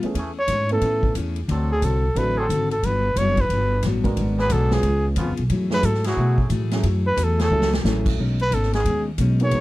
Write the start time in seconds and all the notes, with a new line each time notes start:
0.03 A3 B3 C#4 E4 G#4, muted upright bass stroke, ride
0.14 E2 E3 A3 C#4 E4 G#4, kick, ride
0.40 C#5
0.48 G#2 A3 C#4, kick, hi-hat pedal, ride
0.52 E4 G#4
0.69 A3 B3 C#4 E4 A4, ride
0.81 A2 A3 C#4 E4 G#4, kick, ride
1.03 kick
1.15 E2 A3 C#4 E4, kick, hi-hat pedal, ride
1.19 G#4
1.36 ride
1.48 D2 D3 F#3 C4 D4 F#4 A4, kick, ride
1.72 G#4
1.82 C2 D3 C4 F#4 A4, kick, hi-hat pedal, ride
2.15 A1 D3 F#3 C4 D4 E4 F#4 A4 B4, kick, ride
2.37 F#3 C4 D4 G#4 A4
2.49 G#1 D3 C4 F#4 A4, kick, hi-hat pedal, ride
2.71 A4, ride
2.83 G1 G2 F#3 B3 B4, kick, ride
2.87 D4
3.16 F#1 G2 F#3 D4 C#5, kick, hi-hat pedal, ride
3.20 B3
3.37 B4, kick, ride
3.49 G1 G2 F#3, kick, ride
3.53 B3 D4
3.82 A1 G2 F#3, kick, snare, hi-hat pedal, ride
3.87 B3 D4
4.04 G#3 B3 D4 F#4 A#4, kick, ride
4.16 G#1 G#2 F#3 B3, kick, ride
4.22 D4
4.38 F#3 B3 D4 G#4 B4, snare
4.50 B1 G#2 F#3 B3 A4, kick, hi-hat pedal, ride
4.54 D4
4.71 G#3 B3 C#4 F4 G#4, snare
4.83 C#2 C#3, kick, ride
4.87 B3 F4 G#4
5.16 F2 C#3 F3 B3 C#4 F4, kick, hi-hat pedal, ride
5.20 B3 F4 G#4
5.28 C#2
5.37 B1, ride
5.50 F#2 F#3 A3 E4, kick, ride
5.55 G#4
5.70 F#3 A3 C#4 E4 G#4 B4, snare
5.83 G#2 F#3 A3 E4 G#4 A4, kick, hi-hat pedal, ride
5.94 snare
6.04 F#3 A3 E4 F#4 G#4, snare, ride
6.16 B2 F#3 A3, kick
6.21 E4 G#4
6.38 kick
6.49 A2 F#3 A3 E4 G#4, kick, hi-hat pedal, ride
6.71 F#3 A3 C#4 E4 G#4, snare, ride
6.83 F#2 F#3 A3 E4 G#4, kick, ride
7.07 B4
7.16 E2 F#3 A3 E4 G#4, kick, hi-hat pedal, ride
7.24 A4
7.38 F#3 A3 E4 G#4 A4, snare, ride
7.50 C#2 F#3 A3 C#4 E4 G#4
7.62 snare
7.73 snare
7.84 A1 F#3 A3 C#4 E4 G#4 A4, snare, hi-hat pedal
8.06 kick, crash
8.17 B1 B2 G#3 C#4 D#4, kick
8.39 B4, ride
8.51 G#1 B2 G#3 C#4 D#4 A4, kick, hi-hat pedal, ride
8.63 snare
8.73 D#3 B3 C#4 G#4, snare, ride
8.85 D#2 B2 G#3 C#4 D#4, kick, ride
9.18 B1 B2 G#3 C#4 D#4, kick, hi-hat pedal, ride
9.40 F#3 A#3 B3 D#4 G#4, ride
9.44 C#5
9.51 G#1 G#3 B3 F#4 A#4, kick, ride